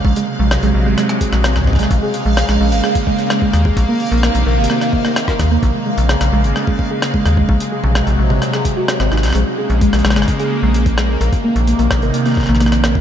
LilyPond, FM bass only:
\new Staff \with { instrumentName = "FM bass" } { \clef bass \time 4/4 \key bes \minor \tempo 4 = 129 bes,,16 r8 bes,,8 bes,,16 bes,,16 aes,,16 r8. bes,,4~ bes,,16 | bes,,16 r8 bes,,8 bes,,16 bes,,16 aes,,16 r4. ees,8 | bes,,16 r8 bes,,8 bes,,16 bes,,16 aes,,16 r4. ees,8 | bes,,16 r8 bes,,8 bes,,16 bes,,16 aes,,16 r4. ees,8 |
bes,,16 r8 bes,,8 bes,,16 bes,,16 aes,,16 r4 r16 aes,,16 aes,,16 bes,,16 | bes,,16 r8 bes,,8 bes,,16 bes,,16 aes,,16 r8. bes,,4~ bes,,16 | bes,,16 r8 bes,,8 bes,,16 r16 aes,,16 r8. bes,,4~ bes,,16 | }